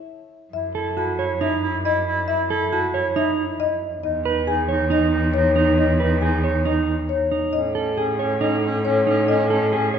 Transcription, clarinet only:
0.53 E4
0.75 E4
0.97 E4
1.19 E4
1.40 E4
1.62 E4
1.84 E4
2.06 E4
2.28 E4
2.50 E4
2.72 E4
2.94 E4
3.16 E4
3.37 E4
3.61 E4
4.04 D#4
4.25 D#4
4.48 D#4
4.70 D#4
4.92 D#4
5.13 D#4
5.36 D#4
5.57 D#4
5.79 D#4
6.02 D#4
6.23 D#4
6.45 D#4
6.67 D#4
6.89 D#4
7.12 D#4
7.55 C#4
7.77 C#4
7.97 C#4
8.20 C#4
8.42 C#4
8.65 C#4
8.86 C#4
9.09 C#4
9.31 C#4
9.52 C#4
9.73 C#4
9.95 C#4

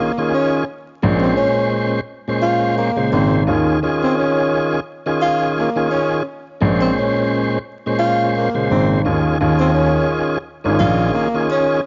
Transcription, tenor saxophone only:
Already playing: A#3
0.34 C#4
1.21 C4
1.37 C#4
2.42 F4
2.78 A#3
3.12 C4
4.03 C4
4.18 C#4
5.22 F4
5.59 A#3
5.91 C#4
6.81 C4
6.98 C#4
7.99 F4
8.37 A#3
8.71 C4
9.59 C4
9.74 C#4
10.79 F4
11.13 A#3
11.50 C#4

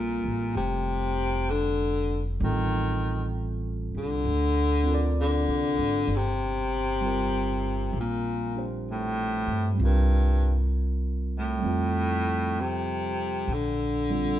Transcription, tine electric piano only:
Already playing: G3 C4 F4 A4
2.40 G3 C4 F4
2.45 A4
4.83 C4 F4
4.90 A#4 D5
7.01 G3 C4 F4
7.06 A#4
8.56 D4 G4 C5
9.74 G3 C4
9.81 F4 A#4
11.59 G3 C4
11.66 F4 A4
14.10 G3 C4 F4 A4

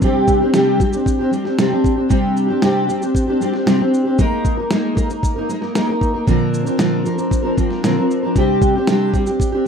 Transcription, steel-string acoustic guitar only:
0.02 C3 G3 C4 D4 G4
0.41 C4 D4 G4
0.53 C3 G3 C4 D4 G4
0.79 G3 C4 D4 G4
0.92 C4 D4 G4
1.19 C4 D4 G4
1.31 G3 C4 D4 G4
1.44 C4 D4 G4
1.58 C3 G3 C4 D4 G4
1.71 C4 D4 G4
1.96 C4 D4 G4
2.09 C3 G3 C4 D4 G4
2.48 C4 D4 G4
2.62 C3 G3 C4 D4 G4
2.87 G3 C4 D4 G4
3.01 C4 D4 G4
3.27 C4 D4 G4
3.40 G3 C4 D4 G4
3.53 C4 D4 G4
3.66 C3 G3 C4 D4 G4
3.78 C4 D4 G4
4.05 C4 D4 G4
4.18 G#3 A#3 D#4 A#4
4.57 A#3 D#4 A#4
4.70 G#3 A#3 D#4 A#4
4.95 G#3 A#3 D#4 A#4
5.10 A#3 D#4 A#4
5.36 A#3 D#4 A#4
5.49 G#3 A#3 D#4 A#4
5.61 A#3 D#4 A#4
5.75 G#3 A#3 D#4 A#4
5.89 A#3 D#4 A#4
6.14 A#3 D#4 A#4
6.27 A#2 D3 F3 C4 D4 A#4
6.65 F3 C4 D4 A#4
6.77 A#2 D3 F3 C4 D4 A#4
7.04 F3 C4 D4 A#4
7.16 F3 C4 D4 A#4
7.42 F3 C4 D4 A#4
7.56 F3 C4 D4 A#4
7.83 A#2 D3 F3 C4 D4 A#4
7.96 F3 C4 D4 A#4
8.23 F3 C4 D4 A#4
8.36 C3 G3 C4 D4 G4
8.75 C4 D4 G4
8.89 C3 G3 C4 D4 G4
9.14 G3 C4 D4 G4
9.27 C4 D4 G4
9.52 C4 D4 G4

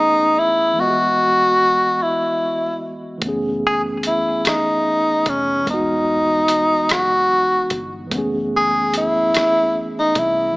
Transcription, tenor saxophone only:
Already playing: D#4
0.39 E4
0.80 F#4
2.03 E4
3.66 G#4
4.07 E4
4.47 D#4
5.29 C#4
5.71 D#4
6.92 F#4
8.57 G#4
8.97 E4
9.99 D#4
10.18 E4

